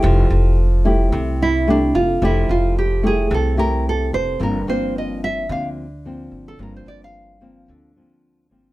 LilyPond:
<<
  \new Staff \with { instrumentName = "Nylon-string guitar" } { \time 4/4 \key f \major \tempo 4 = 110 r2 r8 e'8 d'8 f'8 | e'8 f'8 g'8 aes'8 a'8 bes'8 a'8 c''8 | bes'8 c''8 ees''8 e''8 f''8 r4 r16 a'16 | bes'16 c''16 d''16 f''2~ f''8 r8. | }
  \new Staff \with { instrumentName = "Nylon-string guitar" } { \time 4/4 \key f \major << { <a e' g'>4 r8 <a e' g'>4. <a e' g'>8 r8 | <a e' g'>4 r8 <a e' g'>4 <a e' g'>4. | <f bes c'>8 <f bes c'>4. <f bes c'>8 r8 <f bes c'>4 | <f bes c'>4. <f bes c'>4 <f bes c'>4 <f bes c'>8 | } \\ { f2 c2 | f2 c2 | g,2 d2 | g,2 d2 | } >> }
  \new Staff \with { instrumentName = "Upright bass" } { \clef bass \time 4/4 \key f \major f,,8 f,,4. c,4. f,,8 | f,,8 f,,4. c,4. f,,8 | g,,8 g,,4. d,4. g,,8 | g,,8 g,,4. d,4. g,,8 | }
>>